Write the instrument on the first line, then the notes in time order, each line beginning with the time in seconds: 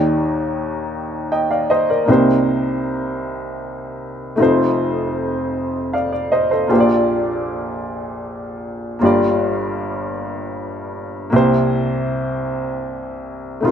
upright piano
Already playing: D#2 D#3 A#3 D#4 G4 D5
1.32 D#5 G5
1.51 D5 F5
1.70 C5 D#5
1.90 A#4 D5
2.05 C2 C3 A#3 D#4
2.09 G4 C5
4.36 F1 F2 A3 D#4
4.40 F4 C5
5.93 D5 F5
6.12 D5
6.32 C5 D#5
6.51 A4 C5
6.67 A#1 A#2 A#3 F4
6.72 G4 C5
6.80 D5
8.99 G1 G2 A#3 F4 G4
9.05 D5
11.30 C2 C3 A#3 E4
11.34 G4 C5
13.61 F1 F2 A3 D#4
13.65 F4 A#4